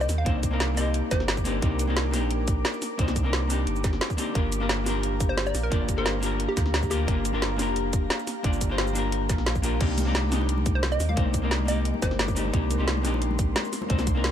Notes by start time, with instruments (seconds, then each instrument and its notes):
Already playing: hollow-body jazz guitar A#3 C4 D4 D#4 G4, ambient pad A#4 D6
0.01 synth pluck D#5, shaker
0.09 sub bass D#2, snare, open hi-hat, shaker
0.18 synth pluck F5
0.25 sub bass C2, hollow-body jazz guitar A#3 C4 D4 D#4 C5, kick, closed hi-hat
0.35 sub bass C2
0.43 kick, closed hi-hat, shaker
0.51 hollow-body jazz guitar A#3 C4 D4 D#4 A#4
0.60 snare, closed hi-hat
0.75 hollow-body jazz guitar A#3 C4 D#4, synth pluck D#5, open hi-hat, shaker
0.80 hollow-body jazz guitar G4
0.94 closed hi-hat
1.11 sub bass G1, synth pluck C5, kick, snare, closed hi-hat, shaker
1.20 snare
1.28 snare, closed hi-hat
1.37 kick, shaker
1.44 hollow-body jazz guitar A#3 C4 D4 D#4 G4, open hi-hat, shaker
1.61 sub bass C2, hollow-body jazz guitar A#3 C4 D4 D#4 G4, kick, closed hi-hat
1.79 closed hi-hat, shaker
1.87 sub bass C2, hollow-body jazz guitar A#3 C4 D4 D#4 G4
1.97 snare, closed hi-hat
2.11 sub bass A#1, hollow-body jazz guitar A#3 C4 D4 D#4, snare, open hi-hat, shaker
2.16 hollow-body jazz guitar G4
2.31 closed hi-hat
2.48 kick, closed hi-hat, shaker
2.65 snare, closed hi-hat
2.74 shaker
2.82 snare, open hi-hat, shaker
2.98 sub bass C2, hollow-body jazz guitar A#3 C4 D4 D#4 C5, kick, closed hi-hat
3.08 snare, shaker
3.16 kick, closed hi-hat, shaker
3.23 hollow-body jazz guitar A#3 C4 D4 D#4 A#4
3.33 snare, closed hi-hat
3.47 hollow-body jazz guitar A#3 C4 D4, open hi-hat, shaker
3.51 hollow-body jazz guitar D#4 G4
3.67 sub bass G1, closed hi-hat
3.76 shaker
3.84 kick, snare, closed hi-hat, shaker
3.93 snare
4.01 snare, closed hi-hat
4.10 kick, shaker
4.17 hollow-body jazz guitar A#3 C4 D4 D#4 G4, open hi-hat, shaker
4.34 sub bass G1, hollow-body jazz guitar A#3 D4 F4 G4 A#4, ambient pad G4 F5 A#5, kick, closed hi-hat
4.52 closed hi-hat, shaker
4.60 hollow-body jazz guitar A#3 D4 F4 G4 A#4
4.69 snare, closed hi-hat
4.84 hollow-body jazz guitar A#3 D4 F4 G4, snare, open hi-hat, shaker
4.89 hollow-body jazz guitar A#4
5.03 closed hi-hat
5.20 kick, closed hi-hat, shaker
5.29 synth pluck C5
5.38 synth pluck C5, snare, closed hi-hat
5.46 synth pluck D5, shaker
5.55 sub bass A#1, snare, open hi-hat, shaker
5.63 synth pluck A#4
5.70 sub bass G1, hollow-body jazz guitar A#3 D4 F4 G4 D5, kick, closed hi-hat
5.81 sub bass G1
5.89 kick, closed hi-hat, shaker
5.96 hollow-body jazz guitar A#3 D4 F4 G4 C5, synth pluck A#4
6.06 snare, closed hi-hat
6.20 hollow-body jazz guitar A#3 D4 F4 G4, open hi-hat, shaker
6.25 hollow-body jazz guitar A#4
6.40 closed hi-hat
6.49 synth pluck G4
6.57 sub bass D2, kick, snare, closed hi-hat, shaker
6.66 snare
6.74 snare, closed hi-hat
6.83 kick, shaker
6.90 hollow-body jazz guitar A#3 D4 F4 G4 A#4, synth pluck G4, open hi-hat, shaker
7.07 sub bass G1, hollow-body jazz guitar A#3 D4 F4 G4 A#4, kick, closed hi-hat
7.25 closed hi-hat, shaker
7.33 sub bass G1, hollow-body jazz guitar A#3 D4 F4 G4 A#4
7.42 snare, closed hi-hat
7.56 sub bass F1, hollow-body jazz guitar A#3 D4 F4, snare, open hi-hat, shaker
7.60 hollow-body jazz guitar G4 A#4
7.76 closed hi-hat
7.93 kick, closed hi-hat, shaker
8.10 snare, closed hi-hat
8.19 shaker
8.27 snare, open hi-hat, shaker
8.43 sub bass G1, hollow-body jazz guitar A#3 D4 F4 G4 D5, kick, closed hi-hat
8.53 shaker
8.61 kick, closed hi-hat, shaker
8.69 hollow-body jazz guitar A#3 D4 F4 G4 C5
8.78 snare, closed hi-hat
8.87 shaker
8.93 hollow-body jazz guitar A#3 D4 F4, open hi-hat, shaker
8.97 hollow-body jazz guitar G4 A#4
9.12 closed hi-hat
9.29 sub bass A#1, kick, snare, closed hi-hat, shaker
9.38 sub bass A#1, snare
9.46 snare, closed hi-hat
9.55 kick, shaker
9.62 hollow-body jazz guitar A#3 D4 F4 G4 A#4, open hi-hat, shaker
9.80 sub bass C2, hollow-body jazz guitar A#3 C4 D4 D#4 G4, ambient pad A#4 D6, kick, closed hi-hat, crash
9.98 closed hi-hat, high conga, shaker
10.05 hollow-body jazz guitar A#3 C4 D4 D#4 G4
10.15 snare, closed hi-hat
10.24 high conga
10.29 hollow-body jazz guitar A#3 C4 D4, snare, open hi-hat, shaker
10.33 hollow-body jazz guitar D#4 G4
10.41 high bongo
10.49 closed hi-hat
10.58 high conga
10.66 kick, closed hi-hat, shaker
10.75 synth pluck C5
10.83 synth pluck C5, snare, closed hi-hat, high conga
10.92 synth pluck D#5, shaker
11.00 sub bass D#2, snare, open hi-hat, shaker
11.09 synth pluck F5, high bongo, high conga
11.16 sub bass C2, hollow-body jazz guitar A#3 C4 D4 D#4 C5, kick, closed hi-hat
11.26 sub bass C2
11.34 kick, closed hi-hat, high conga, shaker
11.42 hollow-body jazz guitar A#3 C4 D4 D#4 A#4
11.51 snare, closed hi-hat
11.60 high conga
11.65 hollow-body jazz guitar A#3 C4, synth pluck D#5, open hi-hat, shaker
11.70 hollow-body jazz guitar D#4 G4
11.85 closed hi-hat
11.94 high conga
12.02 sub bass G1, synth pluck C5, kick, snare, closed hi-hat, high bongo, shaker
12.11 snare
12.19 snare, closed hi-hat, high conga
12.28 kick, high bongo, shaker
12.35 hollow-body jazz guitar A#3 C4 D4 D#4 G4, open hi-hat, shaker
12.46 high conga
12.52 sub bass C2, hollow-body jazz guitar A#3 C4 D4 D#4 G4, ambient pad C6, kick, closed hi-hat
12.70 closed hi-hat, high conga, shaker
12.78 sub bass C2, hollow-body jazz guitar A#3 C4 D4 D#4 G4
12.88 snare, closed hi-hat
12.97 high conga
13.02 sub bass A#1, hollow-body jazz guitar A#3 C4 D4 D#4, snare, open hi-hat, shaker
13.07 hollow-body jazz guitar G4
13.14 high bongo
13.22 closed hi-hat
13.31 high conga
13.39 kick, closed hi-hat, shaker
13.56 snare, closed hi-hat, high conga
13.65 shaker
13.73 snare, open hi-hat, shaker
13.82 high bongo, high conga
13.89 sub bass C2, hollow-body jazz guitar A#3 C4 D4 D#4 C5, kick, closed hi-hat
13.99 snare, shaker
14.07 kick, closed hi-hat, high conga, shaker
14.15 hollow-body jazz guitar A#3 C4 D4 D#4 A#4
14.24 snare, closed hi-hat